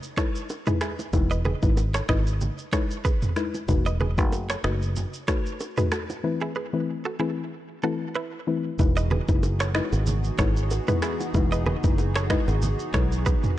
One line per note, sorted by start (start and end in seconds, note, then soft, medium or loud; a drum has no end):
0.03 shaker soft
0.17 0.39 G#3 medium
0.17 0.39 D#4 medium
0.17 0.39 E4 medium
0.17 0.30 A4 medium
0.17 0.39 B4 medium
0.17 0.30 C#5 medium
0.17 finger snap medium
0.17 kick loud
0.17 cross-stick medium
0.17 low bongo medium
0.17 shaker medium
0.35 shaker medium
0.49 high bongo medium
0.49 shaker medium
0.67 0.86 G#3 medium
0.67 0.86 D#4 medium
0.67 0.86 E4 medium
0.67 0.77 G#4 medium
0.67 0.77 B4 medium
0.67 0.86 B4 medium
0.67 mid tom loud
0.67 shaker medium
0.81 0.94 E4 medium
0.81 0.93 G#4 medium
0.81 finger snap medium
0.81 cross-stick medium
0.81 low bongo soft
0.81 shaker medium
0.99 low bongo medium
0.99 shaker medium
1.13 1.53 E1 loud
1.13 1.35 G#3 medium
1.13 1.35 D#4 medium
1.13 1.35 E4 medium
1.13 1.35 B4 loud
1.13 kick loud
1.13 low conga medium
1.13 shaker medium
1.31 1.41 B4 medium
1.31 1.41 D#5 medium
1.31 shaker medium
1.45 1.58 G#4 medium
1.45 1.57 B4 medium
1.45 high bongo medium
1.45 low conga medium
1.62 2.00 G#1 medium
1.62 1.82 G#3 medium
1.62 1.82 D#4 medium
1.62 1.82 E4 medium
1.62 1.82 B4 medium
1.62 kick loud
1.62 shaker medium
1.77 high bongo medium
1.77 shaker medium
1.94 2.05 A4 medium
1.94 2.04 C#5 medium
1.94 finger snap medium
1.94 cross-stick medium
1.94 shaker medium
2.09 2.49 G#1 medium
2.09 2.30 G#3 medium
2.09 2.30 D#4 medium
2.09 2.30 E4 medium
2.09 2.31 B4 medium
2.09 2.22 B4 medium
2.09 2.21 D#5 medium
2.09 finger snap medium
2.09 kick medium
2.09 cross-stick medium
2.27 shaker soft
2.41 low conga medium
2.41 shaker medium
2.58 shaker soft
2.73 2.94 G#3 medium
2.73 2.94 D#4 medium
2.73 2.94 E4 medium
2.73 2.85 A4 medium
2.73 2.94 B4 medium
2.73 2.85 C#5 medium
2.73 finger snap medium
2.73 kick medium
2.73 cross-stick medium
2.73 low bongo medium
2.73 shaker medium
2.91 shaker medium
3.05 3.27 G#4 medium
3.05 3.27 B4 medium
3.05 kick loud
3.05 high bongo medium
3.05 shaker medium
3.22 mid tom loud
3.22 shaker soft
3.36 3.58 G#3 medium
3.36 3.58 D#4 medium
3.36 3.58 E4 medium
3.36 3.58 B4 medium
3.36 finger snap medium
3.36 cross-stick medium
3.36 low bongo soft
3.36 shaker medium
3.54 low bongo medium
3.54 shaker medium
3.68 4.18 E1 loud
3.68 3.90 A3 medium
3.68 3.90 D#4 medium
3.68 3.90 F#4 medium
3.68 3.90 B4 loud
3.68 kick loud
3.68 low conga medium
3.68 shaker medium
3.86 3.97 B4 medium
3.86 3.96 D#5 medium
3.86 shaker medium
4.00 4.13 G#4 medium
4.00 4.13 B4 medium
4.00 high bongo medium
4.00 low conga medium
4.18 4.55 F#1 medium
4.18 4.37 A3 medium
4.18 4.37 D#4 medium
4.18 4.37 F#4 medium
4.18 4.37 B4 medium
4.18 kick loud
4.18 shaker medium
4.32 high bongo medium
4.32 shaker medium
4.50 4.60 A4 medium
4.50 4.60 C#5 medium
4.50 finger snap medium
4.50 cross-stick medium
4.50 shaker medium
4.64 5.04 F#1 medium
4.64 4.86 A3 medium
4.64 4.86 D#4 medium
4.64 4.86 F#4 medium
4.64 4.86 B4 medium
4.64 4.77 B4 medium
4.64 4.76 D#5 medium
4.64 finger snap medium
4.64 cross-stick medium
4.82 shaker soft
4.96 low conga medium
4.96 shaker medium
5.14 shaker soft
5.28 5.49 A3 medium
5.28 5.50 D#4 medium
5.28 5.50 F#4 medium
5.28 5.41 A4 medium
5.28 5.50 B4 medium
5.28 5.40 C#5 medium
5.28 finger snap medium
5.28 kick loud
5.28 cross-stick medium
5.28 low bongo medium
5.28 shaker medium
5.46 shaker medium
5.60 high bongo medium
5.60 shaker medium
5.77 5.97 A3 medium
5.77 5.97 D#4 medium
5.77 5.97 F#4 medium
5.77 5.88 G#4 medium
5.77 5.87 B4 medium
5.77 5.97 B4 medium
5.77 mid tom loud
5.77 shaker medium
5.92 6.05 F#4 medium
5.92 6.04 A4 medium
5.92 finger snap medium
5.92 cross-stick medium
5.92 low bongo soft
5.92 shaker medium
6.10 low bongo medium
6.10 shaker medium
6.24 6.45 E3 medium
6.24 6.45 A3 medium
6.24 6.45 C4 medium
6.24 6.45 E4 medium
6.24 6.45 B4 loud
6.42 6.52 E4 medium
6.42 6.51 G#4 medium
6.56 6.68 G#4 medium
6.56 6.68 B4 medium
6.73 6.92 E3 medium
6.73 6.92 A3 medium
6.73 6.92 C4 medium
6.73 6.93 E4 medium
6.73 6.93 B4 medium
7.05 7.16 F#4 medium
7.05 7.15 A4 medium
7.19 7.41 E3 medium
7.19 7.41 A3 medium
7.19 7.41 C4 medium
7.19 7.41 E4 medium
7.19 7.32 E4 medium
7.19 7.32 G#4 medium
7.19 7.41 B4 medium
7.83 8.05 E3 medium
7.83 8.05 A3 medium
7.83 8.05 C4 medium
7.83 8.05 E4 medium
7.83 7.96 F#4 medium
7.83 7.96 A4 medium
7.83 8.05 B4 medium
8.15 8.38 E4 medium
8.15 8.37 B4 medium
8.47 8.69 E3 medium
8.47 8.69 A3 medium
8.47 8.69 C4 medium
8.47 8.69 E4 medium
8.47 8.69 B4 medium
8.79 9.19 E1 loud
8.79 13.59 E3 medium
8.79 9.00 G#3 medium
8.79 13.59 B3 medium
8.79 9.01 D#4 medium
8.79 13.59 D#4 medium
8.79 9.01 E4 medium
8.79 13.59 F#4 medium
8.79 13.59 G#4 medium
8.79 9.01 B4 loud
8.79 kick loud
8.79 low conga medium
8.79 shaker medium
8.97 9.07 B4 medium
8.97 9.07 D#5 medium
8.97 shaker medium
9.11 9.24 G#4 medium
9.11 9.23 B4 medium
9.11 high bongo medium
9.11 low conga medium
9.28 9.80 F#1 medium
9.28 9.48 G#3 medium
9.28 9.48 D#4 medium
9.28 9.48 E4 medium
9.28 9.48 B4 medium
9.28 kick loud
9.28 low bongo medium
9.28 shaker medium
9.43 high bongo medium
9.43 shaker medium
9.60 9.71 A4 medium
9.60 9.70 C#5 medium
9.60 finger snap medium
9.60 cross-stick medium
9.60 shaker medium
9.75 9.96 G#3 medium
9.75 9.96 D#4 medium
9.75 9.96 E4 medium
9.75 9.97 B4 medium
9.75 9.87 B4 medium
9.75 9.87 D#5 medium
9.75 finger snap medium
9.75 cross-stick medium
9.92 10.30 G#1 medium
9.92 high bongo medium
9.92 shaker soft
10.07 low conga medium
10.07 shaker medium
10.24 shaker soft
10.38 10.78 G#1 medium
10.38 10.60 G#3 medium
10.38 10.60 D#4 medium
10.38 10.60 E4 medium
10.38 10.51 A4 medium
10.38 10.60 B4 medium
10.38 10.51 C#5 loud
10.38 finger snap medium
10.38 kick loud
10.38 cross-stick loud
10.38 low bongo medium
10.38 shaker medium
10.57 shaker medium
10.71 high bongo medium
10.71 shaker medium
10.88 11.07 G#3 medium
10.88 11.07 D#4 medium
10.88 11.07 E4 medium
10.88 10.99 G#4 medium
10.88 10.98 B4 medium
10.88 11.07 B4 medium
10.88 mid tom loud
10.88 shaker medium
11.02 11.15 E4 medium
11.02 11.15 G#4 medium
11.02 finger snap medium
11.02 cross-stick medium
11.02 low bongo soft
11.02 shaker medium
11.20 low bongo medium
11.20 shaker medium
11.34 11.74 E1 loud
11.34 11.56 G#3 medium
11.34 11.56 D#4 medium
11.34 11.56 E4 medium
11.34 11.56 B4 loud
11.34 kick loud
11.34 low conga medium
11.34 shaker medium
11.52 11.62 B4 medium
11.52 11.62 D#5 medium
11.52 shaker medium
11.66 11.79 G#4 medium
11.66 11.78 B4 medium
11.66 high bongo medium
11.66 low conga medium
11.84 12.35 F#1 medium
11.84 12.03 G#3 medium
11.84 12.03 D#4 medium
11.84 12.03 E4 medium
11.84 12.03 B4 medium
11.84 kick loud
11.84 low bongo medium
11.84 shaker medium
11.98 high bongo medium
11.98 shaker medium
12.16 12.26 A4 medium
12.16 12.26 C#5 medium
12.16 finger snap medium
12.16 cross-stick loud
12.16 shaker medium
12.30 12.52 G#3 medium
12.30 12.52 D#4 medium
12.30 12.52 E4 medium
12.30 12.52 B4 medium
12.30 12.43 B4 medium
12.30 12.42 D#5 medium
12.30 finger snap medium
12.30 kick medium
12.30 cross-stick medium
12.48 12.73 G#1 loud
12.48 high bongo medium
12.48 shaker medium
12.62 low conga medium
12.62 shaker medium
12.79 shaker soft
12.94 13.34 B1 medium
12.94 13.15 G#3 medium
12.94 13.15 D#4 medium
12.94 13.16 E4 medium
12.94 13.07 A4 medium
12.94 13.16 B4 medium
12.94 13.06 C#5 medium
12.94 finger snap medium
12.94 kick loud
12.94 cross-stick loud
12.94 low bongo medium
12.94 shaker medium
13.12 shaker medium
13.26 13.48 G#4 medium
13.26 13.48 B4 medium
13.26 kick loud
13.26 high bongo medium
13.26 shaker medium
13.43 mid tom loud
13.43 shaker medium